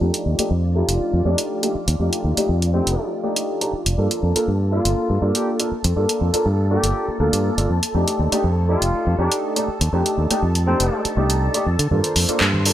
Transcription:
Already playing: F4 D5
0.01 F2 A3 D4 D#4 G4
0.14 closed hi-hat
0.26 D#2
0.38 A3 D4 D#4 G4, muted fingered electric bass stroke, closed hi-hat
0.51 F2
0.75 A3 D4 D#4 F4 G4
0.88 F1, closed hi-hat
1.01 muted fingered electric bass stroke
1.13 F2
1.25 F2 A3 D4 D#4 G4
1.38 closed hi-hat
1.62 A3 D4 D#4 G4, closed hi-hat
1.75 muted fingered electric bass stroke
1.88 D#2, closed hi-hat
1.99 F2 A3 D4 D#4 G4
2.13 closed hi-hat
2.24 D#2
2.37 A3 D4 D#4 G4, muted fingered electric bass stroke, closed hi-hat
2.49 F2
2.62 closed hi-hat
2.74 A3 C4 D4 D#4 G4
2.87 F1, closed hi-hat
3.23 A3 D4 D#4 G4
3.36 closed hi-hat
3.61 A3 D4 D#4 G4, closed hi-hat
3.73 muted fingered electric bass stroke
3.86 F1, closed hi-hat
3.98 G2 A#3 D4 F4 A4 A5
4.11 closed hi-hat
4.23 F2
4.35 A#3 D4 F4 A4, muted fingered electric bass stroke, closed hi-hat
4.48 G2
4.72 A#3 D4 F4 A4
4.85 G1, closed hi-hat
4.97 muted fingered electric bass stroke
5.10 G2
5.22 G2 A#3 D4 F4 A4
5.35 G4, closed hi-hat
5.59 A#3 D4 F4 A4, closed hi-hat
5.72 muted fingered electric bass stroke
5.84 F2, closed hi-hat
5.96 G2 A#3 D4 F4 A4
6.09 closed hi-hat
6.21 F2
6.33 A#3 D4 F4 A4, muted fingered electric bass stroke, closed hi-hat
6.46 G2
6.70 A#3 D4 F4 G4 A4
6.83 G1, closed hi-hat
7.08 muted fingered electric bass stroke
7.20 D2 A#3 D4 F4 A4
7.33 G2, closed hi-hat
7.58 G1 A#3 D4 F4 A4, closed hi-hat
7.70 F2
7.83 closed hi-hat
7.94 F2 A3 D4 D#4 G4
8.08 closed hi-hat
8.19 D#2
8.32 A3 D4 D#4 G4, muted fingered electric bass stroke, closed hi-hat
8.44 F2
8.68 A3 D4 D#4 F4 G4
8.82 F1, closed hi-hat
8.94 muted fingered electric bass stroke
9.07 F2
9.18 F2 A3 D4 D#4 G4
9.32 closed hi-hat
9.56 A3 D4 D#4 G4, closed hi-hat
9.68 muted fingered electric bass stroke
9.81 D#2, closed hi-hat
9.93 F2 A3 D4 D#4 G4
10.06 closed hi-hat
10.18 D#2
10.30 A3 D4 D#4 G4, muted fingered electric bass stroke, closed hi-hat
10.43 F2
10.55 closed hi-hat
10.67 A3 C4 D4 D#4 G4
10.80 F1, closed hi-hat
11.05 muted fingered electric bass stroke, closed hi-hat
11.17 C2 A3 D4 D#4 G4
11.30 closed hi-hat
11.54 A3 D4 D#4 G4, closed hi-hat
11.66 F2
11.79 D3, closed hi-hat
11.91 G2 A#3 D4 F4 A4 C5 C6, high conga, shaker
12.04 closed hi-hat
12.16 F2, open hi-hat
12.29 A#3 D4 F4 A4, muted fingered electric bass stroke, closed hi-hat
12.40 G2, clap
12.53 high conga
12.65 A#3 D4 F4 A4, open hi-hat, shaker

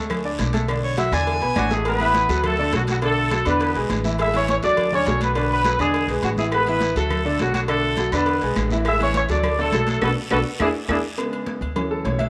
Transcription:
Already playing: D2 A3 A4 A5
0.10 cowbell, high conga, low conga, low agogo, long guiro, claves
0.25 D4 D5 D6, high conga
0.39 B1, cowbell, high conga, low timbale, low agogo, short guiro
0.53 A3 A4 A5, cowbell, high conga, low agogo, short guiro
0.68 D3 D4 D5, cowbell, low agogo, long guiro, claves
0.84 C#5, high conga
0.97 F#3 F#4 E5 F#5, cowbell, high conga, low timbale, low agogo, short guiro
1.12 E2 D3 D4 D5 G#5, low agogo, short guiro, claves
1.27 cowbell, high conga, low agogo, long guiro
1.42 B1 B3 B4 B5, cowbell, high conga
1.56 A1 F#3 D4 F#4 D5 D6, cowbell, high conga, low timbale, low agogo, short guiro, claves
1.71 G#3 A3 G#4 A4 A5, high conga, short guiro
1.85 G#3 B3 G#4 A4 B4, cowbell, low agogo, long guiro
2.00 E3 E4 E5, high conga, low agogo
2.15 cowbell, high conga, low timbale, short guiro
2.29 D2 F#3 F#4 A4, high conga, low agogo, short guiro
2.44 A3 A4, cowbell, high conga, low conga, low agogo, long guiro
2.59 D3 D4 D5
2.73 B1 F#3 F#4 A4, cowbell, high conga, low timbale, low agogo, short guiro
2.87 F#3 F#4, cowbell, high conga, low agogo, short guiro
3.02 D3 A3 D4 A4 D5, cowbell, high conga, low agogo, long guiro
3.18 high conga
3.31 F#3 F#4 A4, cowbell, high conga, low timbale, low agogo, short guiro
3.45 E2 D3 B3 D4 B4 D5, low agogo, short guiro
3.60 cowbell, high conga, low agogo, long guiro
3.75 B1 G#3 G#4 B4, cowbell, high conga
3.90 A1, cowbell, high conga, low timbale, low agogo, short guiro
4.04 E3 E4 E5, high conga, short guiro
4.18 G#3 E4 G#4 A4 E5, cowbell, low agogo, long guiro
4.33 E3 C#4 E4 C#5 E5, high conga, low agogo
4.48 C#4 C#5, cowbell, high conga, low timbale, short guiro
4.63 D2 F#3 D4 F#4 A4 D5, high conga, low agogo, short guiro
4.77 cowbell, high conga, low conga, low agogo, long guiro
4.93 D3 C#4 D4 C#5 D5, high conga, low conga
5.06 B1 F#3 F#4 A4, cowbell, high conga, low timbale, low agogo, short guiro
5.21 B3 B4, cowbell, high conga, low agogo, short guiro
5.35 D3 D4 D5, cowbell, high conga, low agogo, long guiro
5.51 B3 B4, high conga
5.65 F#3 F#4 A4, cowbell, high conga, low timbale, low agogo, short guiro
5.79 E2 D3 G#3 D4 G#4 D5, low agogo, short guiro
5.94 cowbell, high conga, low agogo, long guiro
6.08 B1 G#3 G#4 B4, cowbell, high conga
6.22 A1 F#3 F#4, cowbell, high conga, low timbale, low agogo, short guiro
6.37 E3 G#3 E4 G#4 E5, high conga, short guiro
6.52 G#3 B3 G#4 A4 B4, cowbell, low agogo, long guiro, claves
6.66 E3 E4 E5, high conga, low agogo
6.81 cowbell, high conga, low timbale, short guiro
6.96 D2 F#3 A3 F#4 A4, high conga, low agogo, short guiro
7.10 cowbell, high conga, low conga, low agogo, long guiro, claves
7.25 D3 D4 D5
7.39 B1 F#3 F#4 A4, cowbell, high conga, low timbale, low agogo, short guiro
7.54 F#3 F#4, cowbell, high conga, low agogo, short guiro
7.68 D3 A3 D4 A4 D5, cowbell, low agogo, long guiro, claves
7.83 high conga
7.97 F#3 F#4 A4, cowbell, high conga, low timbale, low agogo, short guiro
8.12 E2 D3 B3 D4 B4 D5, low agogo, short guiro, claves
8.26 cowbell, high conga, low agogo, long guiro
8.41 B1 G#3 G#4 B4, cowbell, high conga
8.56 A1, cowbell, high conga, low timbale, low agogo, short guiro, claves
8.70 E3 E4 E5, high conga, short guiro
8.85 G#3 E4 G#4 A4 E5, cowbell, low agogo, long guiro, claves
9.00 E3 C#4 E4 C#5 E5, high conga, low agogo
9.14 C#4 C#5, cowbell, high conga, low timbale, short guiro
9.29 D2 F#3 D4 F#4 A4 D5, high conga, low agogo, short guiro
9.43 cowbell, high conga, low conga, low agogo, long guiro, claves
9.58 D3 A3 D4 A4 D5, high conga
9.72 B1 F#3 F#4 A4, cowbell, high conga, low timbale, low agogo, short guiro
9.87 A3 A4, cowbell, high conga, low agogo, short guiro
10.01 B1 B3 D4 F#4 A4 B4, cowbell, high conga, high timbale, long guiro, claves
10.30 B1 B3 D4 F#4 A4 B4, cowbell, high conga, high timbale, long guiro, claves
10.60 E2 D4 E4 G#4, cowbell, high conga, high timbale, long guiro, claves
10.88 E2 D4 E4 G#4, cowbell, high conga, high timbale, long guiro, claves
11.18 C#3 G#3 B3, cowbell, high conga, low agogo
11.32 high conga, low agogo
11.46 cowbell, high conga, low timbale
11.61 D2, high conga, low agogo
11.75 E3 F#3 C#4, cowbell, high conga, low conga, low agogo
11.91 A4, high conga
12.05 B1 C#5, cowbell, high conga, low timbale, low agogo
12.19 E5, cowbell, high conga, low agogo

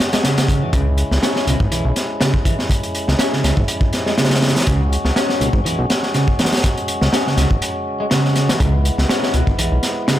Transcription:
Already playing: G#3 C#4 F#4
0.00 snare, closed hi-hat
0.13 G#3, snare, closed hi-hat
0.24 C#3, snare, closed hi-hat
0.38 snare, closed hi-hat
0.48 kick, closed hi-hat
0.62 E3
0.73 C#2 C#3 E4, kick, closed hi-hat
0.98 closed hi-hat
1.11 C#2, snare
1.23 C#4, snare, closed hi-hat
1.36 snare
1.47 C#2 B2, closed hi-hat
1.60 G#1, kick
1.72 B1 E3, closed hi-hat
1.85 B1
1.96 snare, closed hi-hat
2.21 C#3, snare, closed hi-hat
2.34 kick
2.45 E3, kick, closed hi-hat
2.59 snare
2.70 kick, closed hi-hat
2.83 closed hi-hat
2.95 closed hi-hat
3.08 C#2, snare
3.19 C#4, snare, closed hi-hat
3.33 C#3, snare
3.44 C#2 C#3, snare, closed hi-hat
3.57 G#1, kick
3.68 closed hi-hat
3.81 kick
3.93 snare, closed hi-hat
4.06 G#3, snare
4.18 C#3, snare, closed hi-hat
4.24 snare, closed hi-hat
4.30 snare, closed hi-hat
4.35 snare, closed hi-hat
4.42 snare, closed hi-hat
4.48 snare, closed hi-hat
4.56 E3, snare, closed hi-hat
4.60 snare, closed hi-hat
4.67 C#2 C#3 F#4, kick, closed hi-hat
4.93 closed hi-hat
5.05 C#2, snare
5.16 C#4, snare, closed hi-hat
5.29 snare
5.41 C#2 B2, closed hi-hat
5.53 G#1, kick
5.65 B1 E3, closed hi-hat
5.79 B1
5.90 snare, closed hi-hat
6.03 snare
6.14 C#3, snare, closed hi-hat
6.28 kick
6.39 E3, snare, closed hi-hat
6.45 snare, closed hi-hat
6.52 snare, closed hi-hat
6.57 snare, closed hi-hat
6.64 kick, closed hi-hat
6.77 closed hi-hat
6.88 closed hi-hat
7.01 C#2, snare
7.13 C#4, snare, closed hi-hat
7.26 C#3, snare
7.37 C#2 C#3, snare, closed hi-hat
7.51 G#1, kick
7.62 closed hi-hat
8.00 G#3
8.11 C#3, snare, closed hi-hat
8.25 snare
8.36 snare, closed hi-hat
8.49 E3, snare, closed hi-hat
8.60 C#2 C#3 B3 E4, kick, closed hi-hat
8.85 closed hi-hat
8.98 C#2, snare
9.09 C#4, snare, closed hi-hat
9.23 snare
9.34 C#2 B2, closed hi-hat
9.47 G#1, kick
9.59 B1 E3, closed hi-hat
9.72 B1
9.83 snare, closed hi-hat
10.08 C#3, snare, closed hi-hat

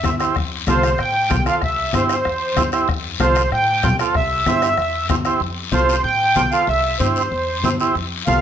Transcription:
Already playing: E5
0.04 G2 E4 G4 C5, bombo low, bombo rim, high conga, short guiro
0.19 E4 G4 C5, bombo rim, short guiro
0.35 F2, bombo low, bombo rim, high conga, long guiro
0.67 C2 F4 A4 C5, bombo rim, high conga, short guiro
0.83 bombo rim, short guiro
0.98 A2 G5, bombo rim, high conga, long guiro
1.30 C2 F4 A4 C5, bombo low, bombo rim, high conga, short guiro
1.46 F4 A4 C5 F5, bombo rim, short guiro
1.61 C2 E5, bombo low, bombo rim, high conga, long guiro
1.93 G2 E4 G4 C5, bombo rim, high conga, short guiro
2.09 C5, bombo rim, short guiro
2.25 E2, bombo rim, high conga, long guiro
2.57 G2 E4 G4 C5, bombo low, bombo rim, high conga, short guiro
2.72 E4 G4 C5, bombo rim, short guiro
2.88 F2, bombo low, bombo rim, high conga, long guiro
3.20 C2 F4 A4 C5, bombo rim, high conga, short guiro
3.35 bombo rim, short guiro
3.51 A2 G5, bombo rim, high conga, long guiro
3.83 C2 F4 A4 C5, bombo low, bombo rim, high conga, short guiro
3.99 F4 A4 C5, bombo rim, short guiro
4.14 C2 E5, bombo low, bombo rim, high conga, long guiro
4.46 G2 E4 G4 C5, bombo rim, high conga, short guiro
4.62 bombo rim, short guiro
4.77 E2, bombo rim, high conga, long guiro
5.09 G2 E4 G4 C5, bombo low, bombo rim, high conga, short guiro
5.25 E4 G4 C5, bombo rim, short guiro
5.40 F2, high conga, long guiro
5.72 C2 F4 A4 C5, high conga, short guiro
5.89 short guiro
6.03 A2 G5, high conga, long guiro
6.36 C2 F4 A4 C5, high conga, short guiro
6.51 F4 A4 C5 F5, short guiro
6.67 C2 E5, high conga, long guiro
7.00 G2 E4 G4 C5, high conga, short guiro
7.16 C5, short guiro
7.31 E2, high conga, long guiro
7.63 G2 E4 G4 C5, high conga, short guiro
7.80 E4 G4 C5, short guiro
7.95 F2, high conga, long guiro
8.26 C2 F4 A4 C5 F5, high conga, short guiro

